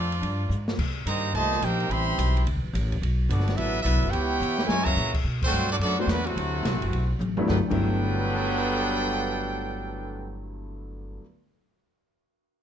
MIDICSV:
0, 0, Header, 1, 6, 480
1, 0, Start_track
1, 0, Key_signature, 1, "major"
1, 0, Tempo, 278940
1, 1347, Time_signature, 4, 2, 24, 8
1, 21730, End_track
2, 0, Start_track
2, 0, Title_t, "Trumpet section"
2, 0, Program_c, 0, 61
2, 0, Note_on_c, 0, 60, 80
2, 0, Note_on_c, 0, 65, 86
2, 0, Note_on_c, 0, 69, 79
2, 0, Note_on_c, 0, 74, 100
2, 298, Note_off_c, 0, 69, 0
2, 301, Note_off_c, 0, 60, 0
2, 1078, Note_off_c, 0, 74, 0
2, 1083, Note_off_c, 0, 65, 0
2, 1845, Note_on_c, 0, 82, 98
2, 1847, Note_on_c, 0, 67, 82
2, 1847, Note_on_c, 0, 72, 74
2, 1851, Note_on_c, 0, 75, 77
2, 2284, Note_off_c, 0, 82, 0
2, 2285, Note_off_c, 0, 67, 0
2, 2285, Note_off_c, 0, 72, 0
2, 2287, Note_off_c, 0, 75, 0
2, 2324, Note_on_c, 0, 67, 91
2, 2324, Note_on_c, 0, 81, 111
2, 2328, Note_on_c, 0, 75, 94
2, 2332, Note_on_c, 0, 72, 93
2, 2764, Note_off_c, 0, 67, 0
2, 2764, Note_off_c, 0, 81, 0
2, 2766, Note_off_c, 0, 75, 0
2, 2768, Note_off_c, 0, 72, 0
2, 2814, Note_on_c, 0, 72, 81
2, 2818, Note_on_c, 0, 70, 86
2, 2820, Note_on_c, 0, 63, 82
2, 2820, Note_on_c, 0, 79, 95
2, 3282, Note_off_c, 0, 72, 0
2, 3284, Note_off_c, 0, 70, 0
2, 3285, Note_off_c, 0, 63, 0
2, 3285, Note_off_c, 0, 79, 0
2, 3296, Note_on_c, 0, 76, 90
2, 3299, Note_on_c, 0, 83, 85
2, 3302, Note_on_c, 0, 67, 100
2, 3303, Note_on_c, 0, 84, 109
2, 4243, Note_off_c, 0, 76, 0
2, 4245, Note_off_c, 0, 83, 0
2, 4246, Note_off_c, 0, 67, 0
2, 4247, Note_off_c, 0, 84, 0
2, 5683, Note_on_c, 0, 69, 72
2, 5686, Note_on_c, 0, 66, 73
2, 5687, Note_on_c, 0, 59, 73
2, 5688, Note_on_c, 0, 74, 89
2, 6119, Note_off_c, 0, 69, 0
2, 6124, Note_off_c, 0, 66, 0
2, 6125, Note_off_c, 0, 59, 0
2, 6125, Note_off_c, 0, 74, 0
2, 6139, Note_on_c, 0, 71, 91
2, 6140, Note_on_c, 0, 69, 85
2, 6146, Note_on_c, 0, 76, 102
2, 6148, Note_on_c, 0, 62, 82
2, 6551, Note_off_c, 0, 76, 0
2, 6562, Note_off_c, 0, 62, 0
2, 6565, Note_off_c, 0, 69, 0
2, 6570, Note_off_c, 0, 71, 0
2, 6572, Note_on_c, 0, 76, 100
2, 6583, Note_on_c, 0, 62, 80
2, 6585, Note_on_c, 0, 69, 83
2, 6591, Note_on_c, 0, 71, 83
2, 7039, Note_off_c, 0, 71, 0
2, 7044, Note_off_c, 0, 76, 0
2, 7050, Note_off_c, 0, 62, 0
2, 7051, Note_off_c, 0, 69, 0
2, 7059, Note_on_c, 0, 71, 93
2, 7061, Note_on_c, 0, 79, 105
2, 7063, Note_on_c, 0, 73, 84
2, 7064, Note_on_c, 0, 64, 88
2, 8019, Note_off_c, 0, 64, 0
2, 8021, Note_off_c, 0, 73, 0
2, 8035, Note_on_c, 0, 80, 114
2, 8040, Note_on_c, 0, 64, 97
2, 8042, Note_on_c, 0, 70, 97
2, 8042, Note_on_c, 0, 73, 92
2, 8043, Note_off_c, 0, 71, 0
2, 8043, Note_off_c, 0, 79, 0
2, 8319, Note_off_c, 0, 73, 0
2, 8331, Note_on_c, 0, 82, 109
2, 8333, Note_on_c, 0, 66, 85
2, 8339, Note_on_c, 0, 73, 86
2, 8340, Note_on_c, 0, 76, 90
2, 8346, Note_off_c, 0, 80, 0
2, 8349, Note_off_c, 0, 64, 0
2, 8350, Note_off_c, 0, 70, 0
2, 8826, Note_off_c, 0, 82, 0
2, 8827, Note_off_c, 0, 66, 0
2, 8830, Note_off_c, 0, 73, 0
2, 8830, Note_off_c, 0, 76, 0
2, 9370, Note_on_c, 0, 72, 106
2, 9377, Note_on_c, 0, 62, 91
2, 9377, Note_on_c, 0, 66, 95
2, 9381, Note_on_c, 0, 57, 90
2, 9793, Note_off_c, 0, 72, 0
2, 9797, Note_off_c, 0, 62, 0
2, 9797, Note_off_c, 0, 66, 0
2, 9799, Note_off_c, 0, 57, 0
2, 9822, Note_on_c, 0, 59, 87
2, 9834, Note_on_c, 0, 66, 80
2, 9835, Note_on_c, 0, 74, 106
2, 9838, Note_on_c, 0, 69, 88
2, 9900, Note_off_c, 0, 59, 0
2, 9909, Note_off_c, 0, 66, 0
2, 9910, Note_off_c, 0, 74, 0
2, 9912, Note_off_c, 0, 69, 0
2, 10015, Note_on_c, 0, 69, 98
2, 10019, Note_on_c, 0, 74, 112
2, 10022, Note_on_c, 0, 66, 100
2, 10027, Note_on_c, 0, 59, 99
2, 10276, Note_off_c, 0, 69, 0
2, 10278, Note_off_c, 0, 74, 0
2, 10280, Note_off_c, 0, 66, 0
2, 10282, Note_off_c, 0, 59, 0
2, 10314, Note_on_c, 0, 57, 84
2, 10319, Note_on_c, 0, 66, 81
2, 10320, Note_on_c, 0, 62, 88
2, 10322, Note_on_c, 0, 72, 101
2, 10470, Note_off_c, 0, 57, 0
2, 10473, Note_off_c, 0, 62, 0
2, 10473, Note_off_c, 0, 66, 0
2, 10474, Note_off_c, 0, 72, 0
2, 10493, Note_on_c, 0, 57, 92
2, 10497, Note_on_c, 0, 62, 84
2, 10498, Note_on_c, 0, 66, 88
2, 10507, Note_on_c, 0, 71, 104
2, 10744, Note_off_c, 0, 57, 0
2, 10744, Note_off_c, 0, 66, 0
2, 10764, Note_on_c, 0, 57, 78
2, 10765, Note_on_c, 0, 66, 88
2, 10767, Note_on_c, 0, 60, 76
2, 10777, Note_off_c, 0, 62, 0
2, 10782, Note_off_c, 0, 71, 0
2, 12387, Note_off_c, 0, 57, 0
2, 12387, Note_off_c, 0, 66, 0
2, 12388, Note_off_c, 0, 60, 0
2, 12883, Note_on_c, 0, 79, 84
2, 12886, Note_on_c, 0, 62, 77
2, 12886, Note_on_c, 0, 69, 74
2, 12890, Note_on_c, 0, 71, 75
2, 13039, Note_off_c, 0, 79, 0
2, 13041, Note_off_c, 0, 62, 0
2, 13041, Note_off_c, 0, 69, 0
2, 13043, Note_off_c, 0, 71, 0
2, 13244, Note_on_c, 0, 79, 106
2, 13253, Note_on_c, 0, 69, 93
2, 13260, Note_on_c, 0, 71, 88
2, 13265, Note_on_c, 0, 62, 91
2, 18009, Note_off_c, 0, 79, 0
2, 18013, Note_off_c, 0, 69, 0
2, 18016, Note_off_c, 0, 71, 0
2, 18019, Note_off_c, 0, 62, 0
2, 21730, End_track
3, 0, Start_track
3, 0, Title_t, "Grand piano"
3, 0, Program_c, 1, 0
3, 10305, Note_on_c, 1, 54, 67
3, 10307, Note_on_c, 1, 62, 57
3, 10311, Note_on_c, 1, 59, 56
3, 10316, Note_on_c, 1, 57, 58
3, 10321, Note_on_c, 1, 66, 74
3, 10459, Note_off_c, 1, 54, 0
3, 10460, Note_off_c, 1, 62, 0
3, 10461, Note_off_c, 1, 59, 0
3, 10464, Note_off_c, 1, 57, 0
3, 10466, Note_off_c, 1, 66, 0
3, 12690, Note_on_c, 1, 43, 87
3, 12697, Note_on_c, 1, 54, 66
3, 12705, Note_on_c, 1, 62, 80
3, 12709, Note_on_c, 1, 57, 71
3, 12710, Note_on_c, 1, 59, 77
3, 12715, Note_on_c, 1, 64, 88
3, 12846, Note_off_c, 1, 43, 0
3, 12863, Note_off_c, 1, 57, 0
3, 12864, Note_off_c, 1, 54, 0
3, 12872, Note_on_c, 1, 43, 66
3, 12874, Note_on_c, 1, 50, 57
3, 12877, Note_off_c, 1, 59, 0
3, 12888, Note_off_c, 1, 64, 0
3, 12889, Note_on_c, 1, 57, 57
3, 12890, Note_on_c, 1, 54, 60
3, 12903, Note_on_c, 1, 59, 54
3, 12914, Note_on_c, 1, 64, 70
3, 13046, Note_off_c, 1, 43, 0
3, 13047, Note_off_c, 1, 50, 0
3, 13055, Note_off_c, 1, 54, 0
3, 13055, Note_off_c, 1, 57, 0
3, 13061, Note_off_c, 1, 59, 0
3, 13067, Note_off_c, 1, 64, 0
3, 13247, Note_on_c, 1, 43, 61
3, 13256, Note_on_c, 1, 50, 64
3, 13262, Note_on_c, 1, 54, 58
3, 13271, Note_on_c, 1, 57, 60
3, 13289, Note_on_c, 1, 59, 61
3, 13290, Note_on_c, 1, 64, 81
3, 13320, Note_off_c, 1, 62, 0
3, 19283, Note_off_c, 1, 43, 0
3, 19288, Note_off_c, 1, 50, 0
3, 19291, Note_off_c, 1, 54, 0
3, 19296, Note_off_c, 1, 57, 0
3, 19304, Note_off_c, 1, 59, 0
3, 19305, Note_off_c, 1, 64, 0
3, 21730, End_track
4, 0, Start_track
4, 0, Title_t, "Trombone section"
4, 0, Program_c, 2, 61
4, 0, Note_on_c, 2, 53, 85
4, 0, Note_on_c, 2, 57, 81
4, 0, Note_on_c, 2, 62, 83
4, 284, Note_off_c, 2, 57, 0
4, 1064, Note_off_c, 2, 62, 0
4, 1066, Note_off_c, 2, 53, 0
4, 1827, Note_on_c, 2, 51, 68
4, 1828, Note_on_c, 2, 58, 73
4, 1834, Note_on_c, 2, 55, 64
4, 2274, Note_off_c, 2, 51, 0
4, 2275, Note_off_c, 2, 58, 0
4, 2278, Note_off_c, 2, 55, 0
4, 2310, Note_on_c, 2, 51, 88
4, 2311, Note_on_c, 2, 57, 87
4, 2321, Note_on_c, 2, 46, 86
4, 2756, Note_off_c, 2, 51, 0
4, 2757, Note_off_c, 2, 57, 0
4, 2762, Note_off_c, 2, 46, 0
4, 2803, Note_on_c, 2, 67, 85
4, 2810, Note_on_c, 2, 58, 82
4, 2813, Note_on_c, 2, 63, 84
4, 3272, Note_on_c, 2, 60, 101
4, 3276, Note_off_c, 2, 67, 0
4, 3276, Note_on_c, 2, 55, 104
4, 3280, Note_off_c, 2, 58, 0
4, 3280, Note_on_c, 2, 52, 96
4, 3281, Note_off_c, 2, 63, 0
4, 4231, Note_off_c, 2, 60, 0
4, 4233, Note_off_c, 2, 55, 0
4, 4235, Note_off_c, 2, 52, 0
4, 5664, Note_on_c, 2, 59, 66
4, 5667, Note_on_c, 2, 54, 71
4, 5678, Note_on_c, 2, 62, 68
4, 6102, Note_off_c, 2, 59, 0
4, 6104, Note_off_c, 2, 54, 0
4, 6120, Note_off_c, 2, 62, 0
4, 6123, Note_on_c, 2, 59, 81
4, 6124, Note_on_c, 2, 54, 91
4, 6128, Note_on_c, 2, 64, 79
4, 6553, Note_off_c, 2, 54, 0
4, 6562, Note_off_c, 2, 64, 0
4, 6563, Note_off_c, 2, 59, 0
4, 6574, Note_on_c, 2, 54, 84
4, 6582, Note_on_c, 2, 64, 88
4, 6584, Note_on_c, 2, 59, 83
4, 7045, Note_off_c, 2, 54, 0
4, 7045, Note_off_c, 2, 59, 0
4, 7050, Note_off_c, 2, 64, 0
4, 7066, Note_on_c, 2, 59, 99
4, 7066, Note_on_c, 2, 67, 98
4, 7068, Note_on_c, 2, 64, 98
4, 8046, Note_off_c, 2, 59, 0
4, 8046, Note_off_c, 2, 67, 0
4, 8047, Note_off_c, 2, 64, 0
4, 8047, Note_on_c, 2, 56, 100
4, 8330, Note_on_c, 2, 49, 92
4, 8330, Note_on_c, 2, 58, 93
4, 8335, Note_on_c, 2, 52, 91
4, 8352, Note_off_c, 2, 56, 0
4, 8825, Note_off_c, 2, 49, 0
4, 8825, Note_off_c, 2, 58, 0
4, 8828, Note_off_c, 2, 52, 0
4, 9390, Note_on_c, 2, 57, 97
4, 9393, Note_on_c, 2, 54, 87
4, 9397, Note_on_c, 2, 60, 96
4, 9804, Note_off_c, 2, 57, 0
4, 9805, Note_off_c, 2, 54, 0
4, 9808, Note_off_c, 2, 60, 0
4, 9832, Note_on_c, 2, 57, 84
4, 9839, Note_on_c, 2, 54, 84
4, 9843, Note_on_c, 2, 62, 96
4, 9908, Note_off_c, 2, 57, 0
4, 9913, Note_off_c, 2, 54, 0
4, 9917, Note_off_c, 2, 62, 0
4, 10019, Note_on_c, 2, 57, 99
4, 10021, Note_on_c, 2, 54, 98
4, 10031, Note_on_c, 2, 62, 88
4, 10278, Note_off_c, 2, 57, 0
4, 10279, Note_off_c, 2, 54, 0
4, 10285, Note_off_c, 2, 62, 0
4, 10300, Note_on_c, 2, 60, 92
4, 10462, Note_off_c, 2, 60, 0
4, 10478, Note_on_c, 2, 54, 92
4, 10485, Note_on_c, 2, 59, 83
4, 10488, Note_on_c, 2, 50, 88
4, 10767, Note_off_c, 2, 54, 0
4, 10770, Note_off_c, 2, 59, 0
4, 10772, Note_off_c, 2, 50, 0
4, 10775, Note_on_c, 2, 45, 80
4, 10778, Note_on_c, 2, 48, 85
4, 10784, Note_on_c, 2, 54, 79
4, 12392, Note_off_c, 2, 45, 0
4, 12393, Note_off_c, 2, 48, 0
4, 12397, Note_off_c, 2, 54, 0
4, 12848, Note_on_c, 2, 50, 95
4, 12854, Note_on_c, 2, 43, 92
4, 12857, Note_on_c, 2, 54, 96
4, 12861, Note_on_c, 2, 59, 94
4, 13021, Note_off_c, 2, 50, 0
4, 13024, Note_off_c, 2, 43, 0
4, 13026, Note_off_c, 2, 54, 0
4, 13028, Note_off_c, 2, 59, 0
4, 13245, Note_on_c, 2, 59, 119
4, 13246, Note_on_c, 2, 43, 119
4, 13248, Note_on_c, 2, 50, 111
4, 13252, Note_on_c, 2, 54, 120
4, 18009, Note_off_c, 2, 59, 0
4, 18010, Note_off_c, 2, 43, 0
4, 18011, Note_off_c, 2, 50, 0
4, 18012, Note_off_c, 2, 54, 0
4, 21730, End_track
5, 0, Start_track
5, 0, Title_t, "Upright bass"
5, 0, Program_c, 3, 32
5, 0, Note_on_c, 3, 41, 101
5, 353, Note_off_c, 3, 41, 0
5, 370, Note_on_c, 3, 43, 95
5, 838, Note_off_c, 3, 43, 0
5, 849, Note_on_c, 3, 44, 97
5, 1323, Note_off_c, 3, 44, 0
5, 1353, Note_on_c, 3, 48, 94
5, 1805, Note_off_c, 3, 48, 0
5, 1816, Note_on_c, 3, 43, 93
5, 2288, Note_off_c, 3, 43, 0
5, 2304, Note_on_c, 3, 36, 88
5, 2772, Note_off_c, 3, 36, 0
5, 2785, Note_on_c, 3, 34, 97
5, 3246, Note_off_c, 3, 34, 0
5, 3256, Note_on_c, 3, 33, 98
5, 3728, Note_off_c, 3, 33, 0
5, 3752, Note_on_c, 3, 35, 106
5, 4217, Note_off_c, 3, 35, 0
5, 4244, Note_on_c, 3, 38, 92
5, 4389, Note_on_c, 3, 36, 69
5, 4414, Note_off_c, 3, 38, 0
5, 4533, Note_off_c, 3, 36, 0
5, 4543, Note_on_c, 3, 33, 66
5, 4695, Note_off_c, 3, 33, 0
5, 4704, Note_on_c, 3, 33, 108
5, 5172, Note_off_c, 3, 33, 0
5, 5194, Note_on_c, 3, 35, 95
5, 5652, Note_off_c, 3, 35, 0
5, 5662, Note_on_c, 3, 31, 107
5, 6131, Note_off_c, 3, 31, 0
5, 6147, Note_on_c, 3, 33, 90
5, 6613, Note_off_c, 3, 33, 0
5, 6621, Note_on_c, 3, 35, 99
5, 6794, Note_on_c, 3, 31, 70
5, 6820, Note_off_c, 3, 35, 0
5, 6928, Note_off_c, 3, 31, 0
5, 6938, Note_on_c, 3, 30, 72
5, 7091, Note_off_c, 3, 30, 0
5, 7109, Note_on_c, 3, 37, 94
5, 7565, Note_off_c, 3, 37, 0
5, 7576, Note_on_c, 3, 40, 106
5, 8046, Note_off_c, 3, 40, 0
5, 8056, Note_on_c, 3, 42, 93
5, 8526, Note_off_c, 3, 42, 0
5, 8537, Note_on_c, 3, 46, 102
5, 9007, Note_off_c, 3, 46, 0
5, 9017, Note_on_c, 3, 47, 89
5, 9479, Note_off_c, 3, 47, 0
5, 9490, Note_on_c, 3, 43, 100
5, 9951, Note_off_c, 3, 43, 0
5, 9961, Note_on_c, 3, 42, 87
5, 10427, Note_off_c, 3, 42, 0
5, 10438, Note_on_c, 3, 40, 100
5, 10916, Note_off_c, 3, 40, 0
5, 10942, Note_on_c, 3, 38, 99
5, 11398, Note_off_c, 3, 38, 0
5, 11408, Note_on_c, 3, 36, 108
5, 11576, Note_off_c, 3, 36, 0
5, 11576, Note_on_c, 3, 33, 54
5, 11720, Note_off_c, 3, 33, 0
5, 11730, Note_on_c, 3, 30, 69
5, 11867, Note_off_c, 3, 30, 0
5, 11877, Note_on_c, 3, 35, 96
5, 12356, Note_off_c, 3, 35, 0
5, 12374, Note_on_c, 3, 33, 102
5, 12845, Note_off_c, 3, 33, 0
5, 12865, Note_on_c, 3, 31, 102
5, 13030, Note_off_c, 3, 31, 0
5, 13256, Note_on_c, 3, 31, 100
5, 19219, Note_off_c, 3, 31, 0
5, 21730, End_track
6, 0, Start_track
6, 0, Title_t, "Drums"
6, 207, Note_on_c, 9, 51, 54
6, 379, Note_off_c, 9, 51, 0
6, 395, Note_on_c, 9, 51, 67
6, 567, Note_off_c, 9, 51, 0
6, 878, Note_on_c, 9, 44, 61
6, 1051, Note_off_c, 9, 44, 0
6, 1168, Note_on_c, 9, 38, 79
6, 1340, Note_off_c, 9, 38, 0
6, 1352, Note_on_c, 9, 36, 78
6, 1353, Note_on_c, 9, 49, 90
6, 1524, Note_off_c, 9, 36, 0
6, 1525, Note_off_c, 9, 49, 0
6, 1835, Note_on_c, 9, 44, 66
6, 1835, Note_on_c, 9, 51, 85
6, 2007, Note_off_c, 9, 44, 0
6, 2007, Note_off_c, 9, 51, 0
6, 2317, Note_on_c, 9, 51, 62
6, 2489, Note_off_c, 9, 51, 0
6, 2609, Note_on_c, 9, 38, 58
6, 2782, Note_off_c, 9, 38, 0
6, 2793, Note_on_c, 9, 44, 64
6, 2793, Note_on_c, 9, 51, 80
6, 2965, Note_off_c, 9, 44, 0
6, 2965, Note_off_c, 9, 51, 0
6, 3098, Note_on_c, 9, 51, 53
6, 3270, Note_off_c, 9, 51, 0
6, 3285, Note_on_c, 9, 51, 70
6, 3457, Note_off_c, 9, 51, 0
6, 3761, Note_on_c, 9, 44, 70
6, 3761, Note_on_c, 9, 51, 90
6, 3933, Note_off_c, 9, 44, 0
6, 3933, Note_off_c, 9, 51, 0
6, 4074, Note_on_c, 9, 51, 56
6, 4244, Note_off_c, 9, 51, 0
6, 4244, Note_on_c, 9, 51, 75
6, 4416, Note_off_c, 9, 51, 0
6, 4732, Note_on_c, 9, 44, 54
6, 4732, Note_on_c, 9, 51, 87
6, 4904, Note_off_c, 9, 44, 0
6, 4904, Note_off_c, 9, 51, 0
6, 5018, Note_on_c, 9, 36, 55
6, 5025, Note_on_c, 9, 51, 59
6, 5190, Note_off_c, 9, 36, 0
6, 5197, Note_off_c, 9, 51, 0
6, 5216, Note_on_c, 9, 51, 72
6, 5388, Note_off_c, 9, 51, 0
6, 5685, Note_on_c, 9, 44, 55
6, 5685, Note_on_c, 9, 51, 82
6, 5848, Note_on_c, 9, 38, 32
6, 5857, Note_off_c, 9, 44, 0
6, 5857, Note_off_c, 9, 51, 0
6, 5980, Note_on_c, 9, 51, 60
6, 5997, Note_off_c, 9, 38, 0
6, 5997, Note_on_c, 9, 38, 55
6, 6152, Note_off_c, 9, 51, 0
6, 6156, Note_on_c, 9, 51, 72
6, 6169, Note_off_c, 9, 38, 0
6, 6328, Note_off_c, 9, 51, 0
6, 6637, Note_on_c, 9, 44, 60
6, 6637, Note_on_c, 9, 51, 81
6, 6809, Note_off_c, 9, 44, 0
6, 6809, Note_off_c, 9, 51, 0
6, 6925, Note_on_c, 9, 51, 52
6, 7097, Note_off_c, 9, 51, 0
6, 7108, Note_on_c, 9, 51, 76
6, 7280, Note_off_c, 9, 51, 0
6, 7595, Note_on_c, 9, 44, 68
6, 7767, Note_off_c, 9, 44, 0
6, 7889, Note_on_c, 9, 38, 70
6, 8061, Note_off_c, 9, 38, 0
6, 8071, Note_on_c, 9, 38, 82
6, 8243, Note_off_c, 9, 38, 0
6, 8364, Note_on_c, 9, 36, 89
6, 8367, Note_on_c, 9, 49, 84
6, 8536, Note_off_c, 9, 36, 0
6, 8539, Note_off_c, 9, 49, 0
6, 8547, Note_on_c, 9, 44, 57
6, 8719, Note_off_c, 9, 44, 0
6, 8846, Note_on_c, 9, 36, 83
6, 8852, Note_on_c, 9, 49, 94
6, 9018, Note_off_c, 9, 36, 0
6, 9025, Note_off_c, 9, 49, 0
6, 9328, Note_on_c, 9, 36, 95
6, 9335, Note_on_c, 9, 49, 82
6, 9500, Note_off_c, 9, 36, 0
6, 9507, Note_off_c, 9, 49, 0
6, 9520, Note_on_c, 9, 44, 66
6, 9692, Note_off_c, 9, 44, 0
6, 10002, Note_on_c, 9, 51, 76
6, 10175, Note_off_c, 9, 51, 0
6, 10478, Note_on_c, 9, 38, 74
6, 10482, Note_on_c, 9, 44, 71
6, 10482, Note_on_c, 9, 51, 83
6, 10650, Note_off_c, 9, 38, 0
6, 10654, Note_off_c, 9, 44, 0
6, 10654, Note_off_c, 9, 51, 0
6, 10782, Note_on_c, 9, 51, 54
6, 10954, Note_off_c, 9, 51, 0
6, 10970, Note_on_c, 9, 51, 70
6, 11142, Note_off_c, 9, 51, 0
6, 11443, Note_on_c, 9, 38, 75
6, 11447, Note_on_c, 9, 44, 60
6, 11447, Note_on_c, 9, 51, 79
6, 11616, Note_off_c, 9, 38, 0
6, 11619, Note_off_c, 9, 44, 0
6, 11619, Note_off_c, 9, 51, 0
6, 11733, Note_on_c, 9, 51, 61
6, 11906, Note_off_c, 9, 51, 0
6, 11924, Note_on_c, 9, 51, 64
6, 12097, Note_off_c, 9, 51, 0
6, 12393, Note_on_c, 9, 47, 55
6, 12397, Note_on_c, 9, 44, 54
6, 12565, Note_off_c, 9, 47, 0
6, 12569, Note_off_c, 9, 44, 0
6, 12682, Note_on_c, 9, 47, 75
6, 12854, Note_off_c, 9, 47, 0
6, 12871, Note_on_c, 9, 36, 56
6, 12879, Note_on_c, 9, 38, 68
6, 13043, Note_off_c, 9, 36, 0
6, 13051, Note_off_c, 9, 38, 0
6, 13259, Note_on_c, 9, 36, 57
6, 13270, Note_on_c, 9, 49, 70
6, 13431, Note_off_c, 9, 36, 0
6, 13442, Note_off_c, 9, 49, 0
6, 21730, End_track
0, 0, End_of_file